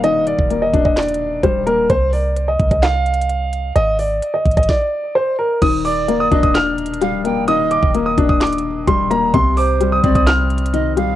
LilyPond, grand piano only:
\new Staff \with { instrumentName = "Grand piano" } { \time 4/4 \key ees \major \tempo 4 = 129 ees''8 d''8. ees''8 ees''16 d''4 c''8 bes'8 | c''8 d''8. ees''8 ees''16 f''2 | ees''8 d''8. ees''8 ees''16 d''4 c''8 bes'8 | ees'''8 d'''8. ees'''8 ees'''16 f'''2 |
ees'''8 d'''8. ees'''8 ees'''16 d'''4 c'''8 bes''8 | c'''8 d'''8. ees'''8 ees'''16 f'''2 | }